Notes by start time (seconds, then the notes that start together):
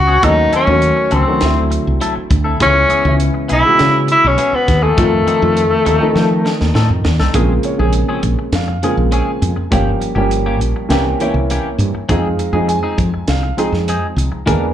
Already playing: C#2 F#4
0.07 B3 C#4 G#4
0.22 D#2 D#3 F#3 A3 C#4 D#4 F#4 A4, kick, closed hi-hat
0.37 muted clean electric guitar stroke
0.52 F#3 A3 C#4 A4, muted fretless electric bass stroke, closed hi-hat
0.67 D#2 D#3 F#3 A3 C#4 F#4, muted clean electric guitar stroke
0.82 closed hi-hat
0.97 muted clean electric guitar stroke
1.11 C#2 F#3 A3 C4 C#4 A4, closed hi-hat
1.27 D#3 F#3 A3 C#4 F#4, muted clean electric guitar stroke
1.41 D2 D3 F#3 A3 C4, muted clean electric guitar stroke, snare, closed hi-hat
1.45 E4
1.70 muted clean electric guitar stroke, closed hi-hat
1.87 C2
2.01 F#3 C4 E4 A4, closed hi-hat
2.16 muted clean electric guitar stroke, muted fretless electric bass stroke
2.30 D2, muted clean electric guitar stroke, kick, closed hi-hat
2.44 C4 E4 A4
2.60 C#2 C#3 E3 G#3 B3 C#4 E4 G#4, kick, closed hi-hat
2.75 muted clean electric guitar stroke
2.89 B3 E4 G#4, muted fretless electric bass stroke, closed hi-hat
3.05 C#2 C#3 E3 G#3 B3 E4, muted clean electric guitar stroke
3.20 closed hi-hat
3.34 muted clean electric guitar stroke
3.48 B1 B3 E4 G#4, closed hi-hat
3.52 E4
3.64 C#3 E3 G#3 B3 F#4, muted clean electric guitar stroke
3.78 C#3, muted clean electric guitar stroke, snare, closed hi-hat
4.07 muted clean electric guitar stroke, closed hi-hat
4.11 E4
4.24 B1 C#4
4.38 B3 E4 G#4, closed hi-hat
4.53 B3, muted fretless electric bass stroke, muted clean electric guitar stroke
4.68 D#2, muted clean electric guitar stroke, kick, snare, closed hi-hat
4.83 A3 E4 G#4
4.97 F2 D#3 F3 A3 C4 D#4 F4 A4, kick, closed hi-hat
5.12 muted clean electric guitar stroke
5.27 F3 C4 D#4 A4, muted fretless electric bass stroke, closed hi-hat
5.42 F2 D#3 F3 A3 C4 F4, muted clean electric guitar stroke
5.57 closed hi-hat
5.71 muted clean electric guitar stroke
5.85 D#2 F3 C4 D#4 A4, closed hi-hat
6.00 D#3 F3 A3 C4 D#4, muted clean electric guitar stroke
6.16 F3, muted clean electric guitar stroke, snare
6.45 muted clean electric guitar stroke, snare
6.61 D#2, snare
6.74 A2 F3 C4 D#4 A4, snare
6.90 F2, muted clean electric guitar stroke
7.05 D#2, muted clean electric guitar stroke, snare
7.20 C2 C4 D#4 A4, snare
7.34 A#1 C#3 F3 G#3 A#3 C4 C#4 F4 G#4, kick, closed hi-hat
7.63 C#5, muted clean electric guitar stroke, closed hi-hat
7.78 A#1 C3 C#3 G#3 A#3 C4 C#4 G#4
7.93 muted clean electric guitar stroke, closed hi-hat
8.09 F3 C4 C#4 G#4
8.23 A#1, muted clean electric guitar stroke, kick, closed hi-hat
8.39 muted clean electric guitar stroke
8.52 F2 F5, snare, closed hi-hat
8.68 muted clean electric guitar stroke
8.83 C#3 F3 G#3 A#3 C4 C#4 F4 G#4, closed hi-hat
8.97 A#1, muted clean electric guitar stroke
9.12 F3 C4 C#4 G#4 G#5, closed hi-hat
9.42 F2, muted clean electric guitar stroke, closed hi-hat
9.56 muted clean electric guitar stroke, muted fretless electric bass stroke
9.71 G1 F3 G3 A#3 C#4 G4, kick, closed hi-hat
9.75 F5
10.01 muted clean electric guitar stroke, closed hi-hat
10.15 G1 F3 G3 A#3 C#4 G4
10.31 muted clean electric guitar stroke, closed hi-hat
10.46 F3 A#3 C#4 G4
10.60 A#1, muted clean electric guitar stroke, closed hi-hat
10.76 muted clean electric guitar stroke
10.89 C2 E3 A#3 C4 C#4 G4, snare, closed hi-hat
11.06 muted clean electric guitar stroke
11.20 E3 A#3 C4 C#4 E4 G4 C#5, closed hi-hat
11.34 C2, muted clean electric guitar stroke
11.50 E3 A#3 C#4 G4, closed hi-hat
11.78 G2, muted clean electric guitar stroke, closed hi-hat
11.94 muted fretless electric bass stroke, muted clean electric guitar stroke
12.09 F2 F3 G#3 C4 D#4 G#4 F5, kick, closed hi-hat
12.39 muted clean electric guitar stroke, closed hi-hat
12.53 F2 F3 G#3 C4 D#4 G#4
12.67 G#5, muted clean electric guitar stroke, closed hi-hat
12.83 C4 D#4 G#4
12.98 F2, kick, closed hi-hat
13.14 muted clean electric guitar stroke
13.28 C2 F5, snare, closed hi-hat
13.43 muted clean electric guitar stroke
13.57 F3 G#3 C4 D#4 G#4, closed hi-hat
13.72 F2, muted clean electric guitar stroke, snare
13.88 C4 D#4 G#4, closed hi-hat
14.16 C2, muted clean electric guitar stroke, closed hi-hat
14.32 muted fretless electric bass stroke, muted clean electric guitar stroke
14.46 E2 E3 G#3 A#3 B3 D4 G#4 A#4, kick, closed hi-hat